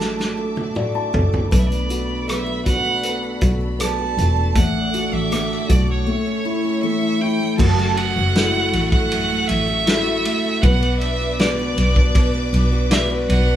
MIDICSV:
0, 0, Header, 1, 7, 480
1, 0, Start_track
1, 0, Tempo, 759494
1, 959, Time_signature, 4, 2, 24, 8
1, 8570, End_track
2, 0, Start_track
2, 0, Title_t, "String section"
2, 0, Program_c, 0, 48
2, 0, Note_on_c, 0, 69, 64
2, 0, Note_on_c, 0, 76, 55
2, 0, Note_on_c, 0, 86, 68
2, 937, Note_off_c, 0, 86, 0
2, 939, Note_off_c, 0, 76, 0
2, 940, Note_off_c, 0, 69, 0
2, 964, Note_on_c, 0, 69, 67
2, 965, Note_on_c, 0, 74, 58
2, 967, Note_on_c, 0, 83, 74
2, 2864, Note_off_c, 0, 83, 0
2, 2882, Note_on_c, 0, 86, 84
2, 2883, Note_on_c, 0, 78, 69
2, 3817, Note_off_c, 0, 74, 0
2, 3831, Note_off_c, 0, 86, 0
2, 3832, Note_off_c, 0, 78, 0
2, 3846, Note_on_c, 0, 73, 71
2, 3847, Note_on_c, 0, 76, 66
2, 3851, Note_on_c, 0, 85, 83
2, 4776, Note_off_c, 0, 69, 0
2, 4790, Note_off_c, 0, 76, 0
2, 4792, Note_off_c, 0, 85, 0
2, 4793, Note_off_c, 0, 73, 0
2, 4797, Note_on_c, 0, 69, 74
2, 4797, Note_on_c, 0, 76, 71
2, 4799, Note_on_c, 0, 78, 69
2, 4800, Note_on_c, 0, 85, 79
2, 6699, Note_off_c, 0, 69, 0
2, 6699, Note_off_c, 0, 76, 0
2, 6700, Note_off_c, 0, 78, 0
2, 6701, Note_off_c, 0, 85, 0
2, 6715, Note_on_c, 0, 74, 71
2, 6719, Note_on_c, 0, 86, 88
2, 6723, Note_on_c, 0, 71, 84
2, 8570, Note_off_c, 0, 71, 0
2, 8570, Note_off_c, 0, 74, 0
2, 8570, Note_off_c, 0, 86, 0
2, 8570, End_track
3, 0, Start_track
3, 0, Title_t, "Violin"
3, 0, Program_c, 1, 40
3, 0, Note_on_c, 1, 81, 85
3, 699, Note_off_c, 1, 81, 0
3, 966, Note_on_c, 1, 74, 65
3, 1007, Note_on_c, 1, 76, 62
3, 1016, Note_off_c, 1, 74, 0
3, 1053, Note_on_c, 1, 74, 74
3, 1062, Note_off_c, 1, 76, 0
3, 1442, Note_off_c, 1, 74, 0
3, 1449, Note_on_c, 1, 76, 84
3, 1668, Note_off_c, 1, 76, 0
3, 1681, Note_on_c, 1, 78, 103
3, 2135, Note_off_c, 1, 78, 0
3, 2410, Note_on_c, 1, 81, 96
3, 2889, Note_on_c, 1, 78, 92
3, 2898, Note_off_c, 1, 81, 0
3, 3248, Note_on_c, 1, 76, 88
3, 3257, Note_off_c, 1, 78, 0
3, 3611, Note_on_c, 1, 74, 83
3, 3620, Note_off_c, 1, 76, 0
3, 3725, Note_off_c, 1, 74, 0
3, 3731, Note_on_c, 1, 73, 80
3, 4300, Note_off_c, 1, 73, 0
3, 4319, Note_on_c, 1, 76, 88
3, 4559, Note_on_c, 1, 79, 89
3, 4568, Note_off_c, 1, 76, 0
3, 4787, Note_off_c, 1, 79, 0
3, 4791, Note_on_c, 1, 81, 108
3, 5038, Note_on_c, 1, 78, 110
3, 5047, Note_off_c, 1, 81, 0
3, 5628, Note_off_c, 1, 78, 0
3, 5631, Note_on_c, 1, 78, 102
3, 5985, Note_on_c, 1, 76, 112
3, 5995, Note_off_c, 1, 78, 0
3, 6708, Note_on_c, 1, 78, 101
3, 6718, Note_off_c, 1, 76, 0
3, 6947, Note_off_c, 1, 78, 0
3, 6951, Note_on_c, 1, 76, 94
3, 7200, Note_on_c, 1, 74, 80
3, 7209, Note_off_c, 1, 76, 0
3, 7920, Note_off_c, 1, 74, 0
3, 8161, Note_on_c, 1, 76, 105
3, 8269, Note_off_c, 1, 76, 0
3, 8397, Note_on_c, 1, 78, 94
3, 8570, Note_off_c, 1, 78, 0
3, 8570, End_track
4, 0, Start_track
4, 0, Title_t, "Grand piano"
4, 0, Program_c, 2, 0
4, 0, Control_c, 2, 64, 127
4, 0, Note_on_c, 2, 54, 58
4, 0, Note_on_c, 2, 62, 45
4, 0, Note_on_c, 2, 66, 42
4, 0, Note_on_c, 2, 69, 52
4, 210, Note_off_c, 2, 62, 0
4, 235, Note_off_c, 2, 69, 0
4, 245, Note_on_c, 2, 69, 48
4, 469, Note_off_c, 2, 66, 0
4, 478, Note_on_c, 2, 66, 49
4, 479, Note_on_c, 2, 74, 64
4, 591, Note_off_c, 2, 74, 0
4, 601, Note_on_c, 2, 81, 61
4, 711, Note_off_c, 2, 69, 0
4, 720, Note_on_c, 2, 69, 52
4, 932, Note_off_c, 2, 54, 0
4, 935, Note_off_c, 2, 81, 0
4, 944, Note_off_c, 2, 66, 0
4, 953, Note_off_c, 2, 69, 0
4, 957, Note_on_c, 2, 59, 59
4, 967, Control_c, 2, 64, 0
4, 1081, Control_c, 2, 64, 127
4, 1202, Note_on_c, 2, 66, 43
4, 1434, Note_off_c, 2, 59, 0
4, 1443, Note_on_c, 2, 59, 46
4, 1671, Note_off_c, 2, 66, 0
4, 1680, Note_on_c, 2, 66, 51
4, 1915, Note_off_c, 2, 59, 0
4, 1925, Note_on_c, 2, 59, 49
4, 2149, Note_off_c, 2, 66, 0
4, 2159, Note_on_c, 2, 66, 51
4, 2385, Note_off_c, 2, 59, 0
4, 2395, Note_on_c, 2, 59, 50
4, 2632, Note_off_c, 2, 66, 0
4, 2642, Note_on_c, 2, 66, 48
4, 2863, Note_off_c, 2, 59, 0
4, 2874, Note_off_c, 2, 66, 0
4, 2882, Note_on_c, 2, 57, 56
4, 2886, Control_c, 2, 64, 0
4, 2991, Control_c, 2, 64, 127
4, 3122, Note_on_c, 2, 66, 51
4, 3350, Note_off_c, 2, 57, 0
4, 3359, Note_on_c, 2, 57, 51
4, 3584, Note_off_c, 2, 66, 0
4, 3594, Note_on_c, 2, 66, 54
4, 3823, Note_off_c, 2, 57, 0
4, 3829, Note_off_c, 2, 66, 0
4, 3833, Note_on_c, 2, 57, 58
4, 3847, Control_c, 2, 64, 0
4, 3949, Control_c, 2, 64, 127
4, 4078, Note_on_c, 2, 64, 51
4, 4306, Note_off_c, 2, 57, 0
4, 4316, Note_on_c, 2, 57, 54
4, 4546, Note_off_c, 2, 64, 0
4, 4556, Note_on_c, 2, 64, 58
4, 4783, Note_off_c, 2, 57, 0
4, 4790, Note_off_c, 2, 64, 0
4, 4791, Note_on_c, 2, 54, 64
4, 4808, Control_c, 2, 64, 0
4, 4918, Control_c, 2, 64, 127
4, 5276, Note_on_c, 2, 64, 45
4, 5276, Note_on_c, 2, 66, 42
4, 5281, Note_on_c, 2, 69, 52
4, 5743, Note_off_c, 2, 64, 0
4, 5743, Note_off_c, 2, 66, 0
4, 5746, Note_off_c, 2, 69, 0
4, 6234, Note_on_c, 2, 64, 49
4, 6238, Note_on_c, 2, 66, 48
4, 6242, Note_on_c, 2, 69, 52
4, 6690, Note_off_c, 2, 54, 0
4, 6702, Note_off_c, 2, 64, 0
4, 6705, Note_off_c, 2, 66, 0
4, 6706, Note_off_c, 2, 69, 0
4, 6724, Note_on_c, 2, 59, 72
4, 6728, Control_c, 2, 64, 0
4, 6831, Control_c, 2, 64, 127
4, 7199, Note_on_c, 2, 66, 50
4, 7200, Note_on_c, 2, 71, 41
4, 7201, Note_on_c, 2, 74, 56
4, 7665, Note_off_c, 2, 66, 0
4, 7665, Note_off_c, 2, 71, 0
4, 7666, Note_off_c, 2, 74, 0
4, 8156, Note_on_c, 2, 66, 56
4, 8160, Note_on_c, 2, 71, 45
4, 8162, Note_on_c, 2, 74, 60
4, 8570, Note_off_c, 2, 59, 0
4, 8570, Note_off_c, 2, 66, 0
4, 8570, Note_off_c, 2, 71, 0
4, 8570, Note_off_c, 2, 74, 0
4, 8570, End_track
5, 0, Start_track
5, 0, Title_t, "Steel-string acoustic guitar"
5, 0, Program_c, 3, 25
5, 0, Note_on_c, 3, 54, 67
5, 0, Note_on_c, 3, 57, 45
5, 0, Note_on_c, 3, 62, 50
5, 0, Note_on_c, 3, 64, 55
5, 117, Note_off_c, 3, 62, 0
5, 119, Note_on_c, 3, 62, 51
5, 227, Note_off_c, 3, 64, 0
5, 235, Note_on_c, 3, 64, 50
5, 352, Note_off_c, 3, 62, 0
5, 354, Note_on_c, 3, 62, 51
5, 472, Note_off_c, 3, 57, 0
5, 475, Note_on_c, 3, 57, 55
5, 591, Note_off_c, 3, 64, 0
5, 599, Note_on_c, 3, 64, 53
5, 711, Note_off_c, 3, 62, 0
5, 714, Note_on_c, 3, 62, 56
5, 836, Note_off_c, 3, 57, 0
5, 839, Note_on_c, 3, 57, 50
5, 956, Note_on_c, 3, 47, 75
5, 1007, Note_off_c, 3, 64, 0
5, 1075, Note_off_c, 3, 62, 0
5, 1077, Note_on_c, 3, 62, 53
5, 1197, Note_on_c, 3, 66, 60
5, 1316, Note_off_c, 3, 62, 0
5, 1319, Note_on_c, 3, 62, 43
5, 1438, Note_off_c, 3, 54, 0
5, 1441, Note_on_c, 3, 54, 56
5, 1554, Note_off_c, 3, 66, 0
5, 1557, Note_on_c, 3, 66, 65
5, 1676, Note_off_c, 3, 62, 0
5, 1679, Note_on_c, 3, 62, 50
5, 1798, Note_off_c, 3, 57, 0
5, 1801, Note_on_c, 3, 57, 47
5, 1915, Note_off_c, 3, 47, 0
5, 1922, Note_on_c, 3, 47, 65
5, 2042, Note_off_c, 3, 62, 0
5, 2044, Note_on_c, 3, 62, 55
5, 2164, Note_off_c, 3, 66, 0
5, 2166, Note_on_c, 3, 66, 58
5, 2278, Note_off_c, 3, 62, 0
5, 2280, Note_on_c, 3, 62, 50
5, 2396, Note_off_c, 3, 54, 0
5, 2399, Note_on_c, 3, 54, 62
5, 2517, Note_off_c, 3, 66, 0
5, 2520, Note_on_c, 3, 66, 57
5, 2630, Note_off_c, 3, 62, 0
5, 2637, Note_on_c, 3, 62, 56
5, 2755, Note_off_c, 3, 57, 0
5, 2757, Note_on_c, 3, 57, 52
5, 2875, Note_off_c, 3, 47, 0
5, 2878, Note_on_c, 3, 45, 71
5, 2926, Note_off_c, 3, 62, 0
5, 2927, Note_off_c, 3, 54, 0
5, 2928, Note_off_c, 3, 66, 0
5, 2995, Note_on_c, 3, 62, 50
5, 3116, Note_on_c, 3, 66, 70
5, 3229, Note_off_c, 3, 62, 0
5, 3237, Note_on_c, 3, 62, 52
5, 3357, Note_on_c, 3, 50, 59
5, 3471, Note_off_c, 3, 66, 0
5, 3479, Note_on_c, 3, 66, 58
5, 3589, Note_off_c, 3, 62, 0
5, 3597, Note_on_c, 3, 62, 49
5, 3711, Note_off_c, 3, 57, 0
5, 3714, Note_on_c, 3, 57, 53
5, 3826, Note_off_c, 3, 45, 0
5, 3834, Note_on_c, 3, 45, 71
5, 3886, Note_off_c, 3, 50, 0
5, 3886, Note_off_c, 3, 62, 0
5, 3887, Note_off_c, 3, 66, 0
5, 3957, Note_on_c, 3, 61, 57
5, 4077, Note_on_c, 3, 64, 60
5, 4196, Note_off_c, 3, 61, 0
5, 4199, Note_on_c, 3, 61, 59
5, 4317, Note_on_c, 3, 52, 64
5, 4430, Note_off_c, 3, 64, 0
5, 4433, Note_on_c, 3, 64, 57
5, 4550, Note_off_c, 3, 61, 0
5, 4553, Note_on_c, 3, 61, 57
5, 4672, Note_off_c, 3, 57, 0
5, 4675, Note_on_c, 3, 57, 57
5, 4792, Note_on_c, 3, 42, 82
5, 4845, Note_off_c, 3, 45, 0
5, 4914, Note_off_c, 3, 57, 0
5, 4916, Note_on_c, 3, 57, 55
5, 5032, Note_off_c, 3, 61, 0
5, 5034, Note_on_c, 3, 61, 63
5, 5158, Note_off_c, 3, 64, 0
5, 5160, Note_on_c, 3, 66, 59
5, 5179, Note_off_c, 3, 52, 0
5, 5273, Note_off_c, 3, 57, 0
5, 5280, Note_on_c, 3, 57, 50
5, 5398, Note_off_c, 3, 66, 0
5, 5400, Note_on_c, 3, 66, 68
5, 5515, Note_off_c, 3, 57, 0
5, 5523, Note_on_c, 3, 57, 57
5, 5632, Note_off_c, 3, 61, 0
5, 5639, Note_on_c, 3, 61, 53
5, 5751, Note_off_c, 3, 42, 0
5, 5759, Note_on_c, 3, 42, 78
5, 5872, Note_off_c, 3, 57, 0
5, 5880, Note_on_c, 3, 57, 59
5, 5988, Note_off_c, 3, 61, 0
5, 5996, Note_on_c, 3, 61, 58
5, 6115, Note_off_c, 3, 66, 0
5, 6117, Note_on_c, 3, 66, 68
5, 6227, Note_off_c, 3, 57, 0
5, 6235, Note_on_c, 3, 57, 58
5, 6354, Note_off_c, 3, 66, 0
5, 6357, Note_on_c, 3, 66, 62
5, 6469, Note_off_c, 3, 57, 0
5, 6477, Note_on_c, 3, 57, 63
5, 6592, Note_off_c, 3, 61, 0
5, 6600, Note_on_c, 3, 61, 61
5, 6719, Note_off_c, 3, 42, 0
5, 6721, Note_on_c, 3, 47, 85
5, 6766, Note_off_c, 3, 57, 0
5, 6768, Note_off_c, 3, 61, 0
5, 6842, Note_on_c, 3, 59, 59
5, 6961, Note_on_c, 3, 62, 63
5, 7078, Note_off_c, 3, 66, 0
5, 7081, Note_on_c, 3, 66, 59
5, 7197, Note_off_c, 3, 59, 0
5, 7199, Note_on_c, 3, 59, 52
5, 7323, Note_off_c, 3, 66, 0
5, 7325, Note_on_c, 3, 66, 70
5, 7439, Note_off_c, 3, 59, 0
5, 7441, Note_on_c, 3, 59, 57
5, 7553, Note_off_c, 3, 62, 0
5, 7561, Note_on_c, 3, 62, 54
5, 7668, Note_off_c, 3, 47, 0
5, 7676, Note_on_c, 3, 47, 74
5, 7799, Note_off_c, 3, 59, 0
5, 7801, Note_on_c, 3, 59, 60
5, 7912, Note_off_c, 3, 62, 0
5, 7919, Note_on_c, 3, 62, 62
5, 8039, Note_off_c, 3, 66, 0
5, 8041, Note_on_c, 3, 66, 68
5, 8157, Note_off_c, 3, 59, 0
5, 8159, Note_on_c, 3, 59, 65
5, 8276, Note_off_c, 3, 66, 0
5, 8278, Note_on_c, 3, 66, 64
5, 8401, Note_off_c, 3, 59, 0
5, 8404, Note_on_c, 3, 59, 58
5, 8514, Note_off_c, 3, 62, 0
5, 8522, Note_on_c, 3, 62, 59
5, 8570, Note_off_c, 3, 47, 0
5, 8570, Note_off_c, 3, 59, 0
5, 8570, Note_off_c, 3, 62, 0
5, 8570, Note_off_c, 3, 66, 0
5, 8570, End_track
6, 0, Start_track
6, 0, Title_t, "Double bass"
6, 0, Program_c, 4, 43
6, 0, Note_on_c, 4, 33, 68
6, 695, Note_off_c, 4, 33, 0
6, 720, Note_on_c, 4, 30, 76
6, 943, Note_off_c, 4, 30, 0
6, 964, Note_on_c, 4, 35, 83
6, 2137, Note_off_c, 4, 35, 0
6, 2161, Note_on_c, 4, 35, 72
6, 2615, Note_off_c, 4, 35, 0
6, 2639, Note_on_c, 4, 28, 72
6, 2862, Note_off_c, 4, 28, 0
6, 2880, Note_on_c, 4, 33, 83
6, 3215, Note_off_c, 4, 33, 0
6, 3235, Note_on_c, 4, 33, 79
6, 3461, Note_off_c, 4, 33, 0
6, 3601, Note_on_c, 4, 35, 80
6, 3824, Note_off_c, 4, 35, 0
6, 4800, Note_on_c, 4, 30, 85
6, 5135, Note_off_c, 4, 30, 0
6, 5158, Note_on_c, 4, 30, 75
6, 5493, Note_off_c, 4, 30, 0
6, 5518, Note_on_c, 4, 33, 85
6, 5974, Note_off_c, 4, 33, 0
6, 6003, Note_on_c, 4, 33, 78
6, 6456, Note_off_c, 4, 33, 0
6, 6721, Note_on_c, 4, 35, 95
6, 7415, Note_off_c, 4, 35, 0
6, 7440, Note_on_c, 4, 35, 84
6, 7895, Note_off_c, 4, 35, 0
6, 7920, Note_on_c, 4, 35, 92
6, 8374, Note_off_c, 4, 35, 0
6, 8400, Note_on_c, 4, 35, 91
6, 8570, Note_off_c, 4, 35, 0
6, 8570, End_track
7, 0, Start_track
7, 0, Title_t, "Drums"
7, 0, Note_on_c, 9, 38, 45
7, 63, Note_off_c, 9, 38, 0
7, 124, Note_on_c, 9, 38, 45
7, 187, Note_off_c, 9, 38, 0
7, 360, Note_on_c, 9, 48, 55
7, 424, Note_off_c, 9, 48, 0
7, 481, Note_on_c, 9, 47, 73
7, 544, Note_off_c, 9, 47, 0
7, 720, Note_on_c, 9, 43, 92
7, 783, Note_off_c, 9, 43, 0
7, 845, Note_on_c, 9, 43, 67
7, 908, Note_off_c, 9, 43, 0
7, 962, Note_on_c, 9, 36, 86
7, 962, Note_on_c, 9, 42, 69
7, 1025, Note_off_c, 9, 42, 0
7, 1026, Note_off_c, 9, 36, 0
7, 1085, Note_on_c, 9, 42, 44
7, 1148, Note_off_c, 9, 42, 0
7, 1201, Note_on_c, 9, 42, 62
7, 1265, Note_off_c, 9, 42, 0
7, 1447, Note_on_c, 9, 42, 64
7, 1451, Note_on_c, 9, 37, 83
7, 1510, Note_off_c, 9, 42, 0
7, 1514, Note_off_c, 9, 37, 0
7, 1681, Note_on_c, 9, 42, 71
7, 1683, Note_on_c, 9, 36, 67
7, 1744, Note_off_c, 9, 42, 0
7, 1747, Note_off_c, 9, 36, 0
7, 1916, Note_on_c, 9, 42, 72
7, 1979, Note_off_c, 9, 42, 0
7, 2156, Note_on_c, 9, 42, 65
7, 2160, Note_on_c, 9, 36, 78
7, 2219, Note_off_c, 9, 42, 0
7, 2224, Note_off_c, 9, 36, 0
7, 2400, Note_on_c, 9, 42, 92
7, 2405, Note_on_c, 9, 37, 93
7, 2463, Note_off_c, 9, 42, 0
7, 2468, Note_off_c, 9, 37, 0
7, 2644, Note_on_c, 9, 42, 72
7, 2707, Note_off_c, 9, 42, 0
7, 2877, Note_on_c, 9, 42, 79
7, 2879, Note_on_c, 9, 36, 93
7, 2940, Note_off_c, 9, 42, 0
7, 2942, Note_off_c, 9, 36, 0
7, 3121, Note_on_c, 9, 42, 59
7, 3184, Note_off_c, 9, 42, 0
7, 3361, Note_on_c, 9, 42, 66
7, 3365, Note_on_c, 9, 37, 83
7, 3424, Note_off_c, 9, 42, 0
7, 3428, Note_off_c, 9, 37, 0
7, 3486, Note_on_c, 9, 37, 34
7, 3549, Note_off_c, 9, 37, 0
7, 3599, Note_on_c, 9, 42, 67
7, 3601, Note_on_c, 9, 36, 73
7, 3662, Note_off_c, 9, 42, 0
7, 3664, Note_off_c, 9, 36, 0
7, 4800, Note_on_c, 9, 36, 104
7, 4802, Note_on_c, 9, 49, 97
7, 4863, Note_off_c, 9, 36, 0
7, 4865, Note_off_c, 9, 49, 0
7, 4924, Note_on_c, 9, 51, 40
7, 4987, Note_off_c, 9, 51, 0
7, 5039, Note_on_c, 9, 51, 55
7, 5102, Note_off_c, 9, 51, 0
7, 5280, Note_on_c, 9, 51, 60
7, 5284, Note_on_c, 9, 38, 100
7, 5344, Note_off_c, 9, 51, 0
7, 5347, Note_off_c, 9, 38, 0
7, 5520, Note_on_c, 9, 51, 65
7, 5583, Note_off_c, 9, 51, 0
7, 5638, Note_on_c, 9, 51, 35
7, 5639, Note_on_c, 9, 36, 81
7, 5702, Note_off_c, 9, 36, 0
7, 5702, Note_off_c, 9, 51, 0
7, 5761, Note_on_c, 9, 51, 72
7, 5825, Note_off_c, 9, 51, 0
7, 5997, Note_on_c, 9, 51, 63
7, 6060, Note_off_c, 9, 51, 0
7, 6239, Note_on_c, 9, 51, 81
7, 6243, Note_on_c, 9, 38, 97
7, 6302, Note_off_c, 9, 51, 0
7, 6307, Note_off_c, 9, 38, 0
7, 6480, Note_on_c, 9, 51, 72
7, 6543, Note_off_c, 9, 51, 0
7, 6719, Note_on_c, 9, 36, 97
7, 6719, Note_on_c, 9, 51, 68
7, 6782, Note_off_c, 9, 36, 0
7, 6783, Note_off_c, 9, 51, 0
7, 6841, Note_on_c, 9, 51, 44
7, 6905, Note_off_c, 9, 51, 0
7, 6960, Note_on_c, 9, 51, 51
7, 7023, Note_off_c, 9, 51, 0
7, 7201, Note_on_c, 9, 51, 60
7, 7205, Note_on_c, 9, 38, 96
7, 7265, Note_off_c, 9, 51, 0
7, 7269, Note_off_c, 9, 38, 0
7, 7443, Note_on_c, 9, 51, 63
7, 7506, Note_off_c, 9, 51, 0
7, 7560, Note_on_c, 9, 36, 77
7, 7623, Note_off_c, 9, 36, 0
7, 7680, Note_on_c, 9, 36, 89
7, 7681, Note_on_c, 9, 51, 74
7, 7743, Note_off_c, 9, 36, 0
7, 7744, Note_off_c, 9, 51, 0
7, 7923, Note_on_c, 9, 51, 60
7, 7986, Note_off_c, 9, 51, 0
7, 8158, Note_on_c, 9, 51, 85
7, 8163, Note_on_c, 9, 38, 106
7, 8222, Note_off_c, 9, 51, 0
7, 8226, Note_off_c, 9, 38, 0
7, 8403, Note_on_c, 9, 51, 69
7, 8466, Note_off_c, 9, 51, 0
7, 8570, End_track
0, 0, End_of_file